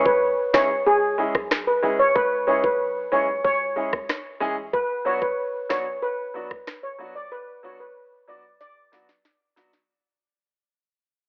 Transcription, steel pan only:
0, 0, Header, 1, 2, 480
1, 0, Start_track
1, 0, Tempo, 645161
1, 1603, Time_signature, 4, 2, 24, 8
1, 8394, End_track
2, 0, Start_track
2, 0, Title_t, "Steel pan"
2, 0, Program_c, 0, 114
2, 44, Note_on_c, 0, 71, 74
2, 137, Note_off_c, 0, 71, 0
2, 404, Note_on_c, 0, 73, 75
2, 497, Note_off_c, 0, 73, 0
2, 644, Note_on_c, 0, 68, 102
2, 982, Note_off_c, 0, 68, 0
2, 1245, Note_on_c, 0, 71, 72
2, 1338, Note_off_c, 0, 71, 0
2, 1483, Note_on_c, 0, 73, 81
2, 1576, Note_off_c, 0, 73, 0
2, 1603, Note_on_c, 0, 71, 107
2, 1697, Note_off_c, 0, 71, 0
2, 1843, Note_on_c, 0, 73, 69
2, 1937, Note_off_c, 0, 73, 0
2, 1963, Note_on_c, 0, 71, 77
2, 2057, Note_off_c, 0, 71, 0
2, 2324, Note_on_c, 0, 73, 73
2, 2418, Note_off_c, 0, 73, 0
2, 2564, Note_on_c, 0, 73, 98
2, 2902, Note_off_c, 0, 73, 0
2, 3522, Note_on_c, 0, 71, 107
2, 3616, Note_off_c, 0, 71, 0
2, 3763, Note_on_c, 0, 73, 76
2, 3857, Note_off_c, 0, 73, 0
2, 3883, Note_on_c, 0, 71, 72
2, 3977, Note_off_c, 0, 71, 0
2, 4241, Note_on_c, 0, 73, 77
2, 4336, Note_off_c, 0, 73, 0
2, 4482, Note_on_c, 0, 71, 97
2, 4821, Note_off_c, 0, 71, 0
2, 5083, Note_on_c, 0, 73, 73
2, 5177, Note_off_c, 0, 73, 0
2, 5323, Note_on_c, 0, 74, 80
2, 5417, Note_off_c, 0, 74, 0
2, 5443, Note_on_c, 0, 71, 104
2, 5537, Note_off_c, 0, 71, 0
2, 5684, Note_on_c, 0, 73, 62
2, 5778, Note_off_c, 0, 73, 0
2, 5804, Note_on_c, 0, 71, 79
2, 5897, Note_off_c, 0, 71, 0
2, 6163, Note_on_c, 0, 74, 74
2, 6257, Note_off_c, 0, 74, 0
2, 6403, Note_on_c, 0, 74, 96
2, 6742, Note_off_c, 0, 74, 0
2, 8394, End_track
0, 0, End_of_file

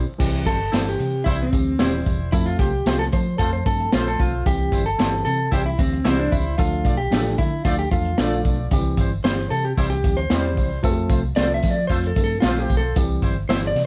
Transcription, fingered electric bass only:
0, 0, Header, 1, 2, 480
1, 0, Start_track
1, 0, Key_signature, 0, "major"
1, 0, Tempo, 531444
1, 182, Time_signature, 4, 2, 24, 8
1, 12521, End_track
2, 0, Start_track
2, 0, Title_t, "Fingered electric bass"
2, 0, Program_c, 0, 33
2, 178, Note_on_c, 0, 36, 101
2, 377, Note_off_c, 0, 36, 0
2, 418, Note_on_c, 0, 31, 82
2, 617, Note_off_c, 0, 31, 0
2, 663, Note_on_c, 0, 31, 85
2, 860, Note_off_c, 0, 31, 0
2, 900, Note_on_c, 0, 48, 85
2, 1099, Note_off_c, 0, 48, 0
2, 1140, Note_on_c, 0, 36, 88
2, 1339, Note_off_c, 0, 36, 0
2, 1382, Note_on_c, 0, 38, 84
2, 1581, Note_off_c, 0, 38, 0
2, 1623, Note_on_c, 0, 27, 84
2, 1822, Note_off_c, 0, 27, 0
2, 1865, Note_on_c, 0, 28, 85
2, 2063, Note_off_c, 0, 28, 0
2, 2103, Note_on_c, 0, 41, 89
2, 2303, Note_off_c, 0, 41, 0
2, 2340, Note_on_c, 0, 36, 77
2, 2541, Note_off_c, 0, 36, 0
2, 2581, Note_on_c, 0, 36, 83
2, 2782, Note_off_c, 0, 36, 0
2, 2829, Note_on_c, 0, 53, 91
2, 3026, Note_off_c, 0, 53, 0
2, 3062, Note_on_c, 0, 41, 92
2, 3263, Note_off_c, 0, 41, 0
2, 3305, Note_on_c, 0, 43, 94
2, 3505, Note_off_c, 0, 43, 0
2, 3552, Note_on_c, 0, 34, 96
2, 3749, Note_off_c, 0, 34, 0
2, 3789, Note_on_c, 0, 35, 96
2, 3988, Note_off_c, 0, 35, 0
2, 4028, Note_on_c, 0, 36, 93
2, 4227, Note_off_c, 0, 36, 0
2, 4265, Note_on_c, 0, 31, 93
2, 4465, Note_off_c, 0, 31, 0
2, 4516, Note_on_c, 0, 31, 86
2, 4712, Note_off_c, 0, 31, 0
2, 4753, Note_on_c, 0, 48, 90
2, 4950, Note_off_c, 0, 48, 0
2, 4986, Note_on_c, 0, 36, 91
2, 5186, Note_off_c, 0, 36, 0
2, 5229, Note_on_c, 0, 38, 84
2, 5428, Note_off_c, 0, 38, 0
2, 5469, Note_on_c, 0, 36, 96
2, 5667, Note_off_c, 0, 36, 0
2, 5711, Note_on_c, 0, 37, 87
2, 5909, Note_off_c, 0, 37, 0
2, 5953, Note_on_c, 0, 38, 104
2, 6150, Note_off_c, 0, 38, 0
2, 6186, Note_on_c, 0, 35, 79
2, 6386, Note_off_c, 0, 35, 0
2, 6429, Note_on_c, 0, 33, 74
2, 6627, Note_off_c, 0, 33, 0
2, 6673, Note_on_c, 0, 50, 84
2, 6870, Note_off_c, 0, 50, 0
2, 6907, Note_on_c, 0, 38, 81
2, 7106, Note_off_c, 0, 38, 0
2, 7152, Note_on_c, 0, 40, 82
2, 7349, Note_off_c, 0, 40, 0
2, 7388, Note_on_c, 0, 34, 98
2, 7586, Note_off_c, 0, 34, 0
2, 7632, Note_on_c, 0, 35, 98
2, 7829, Note_off_c, 0, 35, 0
2, 7868, Note_on_c, 0, 36, 97
2, 8067, Note_off_c, 0, 36, 0
2, 8104, Note_on_c, 0, 31, 83
2, 8303, Note_off_c, 0, 31, 0
2, 8347, Note_on_c, 0, 31, 72
2, 8545, Note_off_c, 0, 31, 0
2, 8587, Note_on_c, 0, 48, 91
2, 8786, Note_off_c, 0, 48, 0
2, 8828, Note_on_c, 0, 36, 86
2, 9070, Note_off_c, 0, 36, 0
2, 9070, Note_on_c, 0, 38, 82
2, 9267, Note_off_c, 0, 38, 0
2, 9311, Note_on_c, 0, 40, 95
2, 9551, Note_off_c, 0, 40, 0
2, 9551, Note_on_c, 0, 36, 93
2, 9747, Note_off_c, 0, 36, 0
2, 9786, Note_on_c, 0, 41, 90
2, 9984, Note_off_c, 0, 41, 0
2, 10024, Note_on_c, 0, 36, 84
2, 10223, Note_off_c, 0, 36, 0
2, 10268, Note_on_c, 0, 36, 86
2, 10465, Note_off_c, 0, 36, 0
2, 10510, Note_on_c, 0, 53, 102
2, 10706, Note_off_c, 0, 53, 0
2, 10745, Note_on_c, 0, 41, 88
2, 10943, Note_off_c, 0, 41, 0
2, 10986, Note_on_c, 0, 43, 84
2, 11184, Note_off_c, 0, 43, 0
2, 11231, Note_on_c, 0, 34, 99
2, 11427, Note_off_c, 0, 34, 0
2, 11472, Note_on_c, 0, 35, 92
2, 11667, Note_off_c, 0, 35, 0
2, 11710, Note_on_c, 0, 36, 103
2, 11906, Note_off_c, 0, 36, 0
2, 11943, Note_on_c, 0, 31, 100
2, 12141, Note_off_c, 0, 31, 0
2, 12182, Note_on_c, 0, 31, 90
2, 12381, Note_off_c, 0, 31, 0
2, 12419, Note_on_c, 0, 48, 93
2, 12521, Note_off_c, 0, 48, 0
2, 12521, End_track
0, 0, End_of_file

